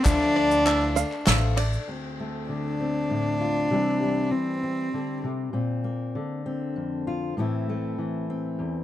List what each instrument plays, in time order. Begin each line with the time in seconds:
0.03 upright bass D2, twelve-string acoustic guitar D3 F3 A3 D4 E4, cello D4, kick, clap, ride, shaker
0.21 clap
0.36 five-string banjo D5
0.51 clap, shaker
0.66 twelve-string acoustic guitar F3 A3 D4 E4, five-string banjo E5, clap, ride, shaker
0.82 clap
0.96 twelve-string acoustic guitar A3 D4, five-string banjo F5, clap, shaker
1.12 clap
1.26 upright bass A1, twelve-string acoustic guitar F3 A3 D4, five-string banjo E5, snare, clap, ride
1.57 twelve-string acoustic guitar A3 D4, five-string banjo D5, clap, ride, shaker
1.73 shaker
1.88 steel-string acoustic guitar D2 C4
2.20 steel-string acoustic guitar A3
2.49 steel-string acoustic guitar D3, cello D4
2.80 steel-string acoustic guitar C4
3.10 steel-string acoustic guitar A2
3.41 steel-string acoustic guitar F4
3.70 steel-string acoustic guitar C3 E3 G3 C4 E4
4.02 steel-string acoustic guitar G3
4.31 steel-string acoustic guitar E3, cello C4
4.63 steel-string acoustic guitar C4
4.94 steel-string acoustic guitar D3
5.24 steel-string acoustic guitar C3
5.53 steel-string acoustic guitar A#2 C4
5.84 steel-string acoustic guitar A#3
6.15 steel-string acoustic guitar D3
6.46 steel-string acoustic guitar C4
6.76 steel-string acoustic guitar F2
7.07 steel-string acoustic guitar F4
7.37 steel-string acoustic guitar A2 E3 A3 C4 E4
7.69 steel-string acoustic guitar A3
7.99 steel-string acoustic guitar E3
8.30 steel-string acoustic guitar C4
8.59 steel-string acoustic guitar E2